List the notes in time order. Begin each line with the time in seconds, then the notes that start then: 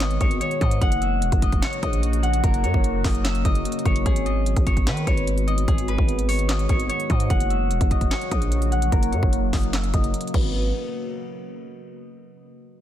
Already playing: G#1 D#3 G#3 B3 F#4 G#4 B4 C#5
0.00 D#5, snare, clap, closed hi-hat
0.11 closed hi-hat
0.21 G#1 C#5, kick, closed hi-hat
0.31 closed hi-hat
0.41 C#5, closed hi-hat
0.51 closed hi-hat
0.61 G#2 D#5, kick, closed hi-hat
0.71 closed hi-hat
0.81 F#1 C#3 F#3 A#3 F#4 F#5, kick, closed hi-hat
0.92 closed hi-hat
1.02 E5, closed hi-hat
1.22 E1, closed hi-hat
1.32 F#1, kick, closed hi-hat
1.42 D#5, kick, closed hi-hat
1.52 kick, closed hi-hat
1.62 C#5, snare, clap, closed hi-hat
1.73 closed hi-hat
1.82 A#1 D#5, kick, closed hi-hat
1.93 closed hi-hat
2.03 closed hi-hat
2.13 closed hi-hat
2.23 F#5, closed hi-hat
2.34 closed hi-hat
2.44 F#1 A#4, kick, closed hi-hat
2.54 closed hi-hat
2.63 F#2 C#5, closed hi-hat
2.74 F#1, kick
2.84 closed hi-hat
3.04 F#1 D#5, kick, snare, clap, open hi-hat
3.15 closed hi-hat
3.24 E5, snare, clap, closed hi-hat
3.35 closed hi-hat
3.45 F#1 D#5, kick, closed hi-hat
3.55 closed hi-hat
3.65 closed hi-hat
3.72 closed hi-hat
3.79 closed hi-hat
3.85 F#1 C#5, kick, closed hi-hat
3.96 closed hi-hat
4.06 G#1 D#3 G#3 B3 F#4 G#4, kick, closed hi-hat
4.16 closed hi-hat
4.26 D#5, closed hi-hat
4.46 closed hi-hat
4.57 G#1, kick, closed hi-hat
4.67 C#5, kick, closed hi-hat
4.77 kick, closed hi-hat
4.87 D#3 B4, snare, clap, closed hi-hat
4.97 closed hi-hat
5.07 G#1 C#5, kick, closed hi-hat
5.17 closed hi-hat
5.27 closed hi-hat
5.38 closed hi-hat
5.47 D#5, closed hi-hat
5.58 closed hi-hat
5.68 G#1 G#4, kick, closed hi-hat
5.78 closed hi-hat
5.88 B4, closed hi-hat
5.98 G#1, kick
6.09 closed hi-hat
6.19 closed hi-hat
6.29 C#5, open hi-hat
6.39 closed hi-hat
6.48 D#5, snare, clap, closed hi-hat
6.59 closed hi-hat
6.69 G#1 C#5, kick, closed hi-hat
6.80 closed hi-hat
6.89 C#5, closed hi-hat
7.00 closed hi-hat
7.10 G#2 D#5, kick, closed hi-hat
7.20 closed hi-hat
7.30 F#1 C#3 F#3 A#3 F#5, kick, closed hi-hat
7.40 closed hi-hat
7.50 E5, closed hi-hat
7.71 E1, closed hi-hat
7.81 F#1, kick, closed hi-hat
7.91 D#5, kick, closed hi-hat
8.01 kick, closed hi-hat
8.11 C#5, snare, clap, closed hi-hat
8.21 closed hi-hat
8.31 A#1 D#5, kick, closed hi-hat
8.42 closed hi-hat
8.52 closed hi-hat
8.62 closed hi-hat
8.72 F#5, closed hi-hat
8.82 closed hi-hat
8.92 F#1 A#4, kick, closed hi-hat
9.03 closed hi-hat
9.12 F#2 C#5, closed hi-hat
9.23 F#1, kick
9.33 closed hi-hat
9.53 F#1 D#5, kick, snare, clap, open hi-hat
9.63 closed hi-hat
9.73 E5, snare, clap, closed hi-hat
9.84 closed hi-hat
9.94 F#1 D#5, kick, closed hi-hat
10.04 closed hi-hat
10.14 closed hi-hat
10.21 closed hi-hat
10.27 closed hi-hat
10.34 G#1 B4, kick, crash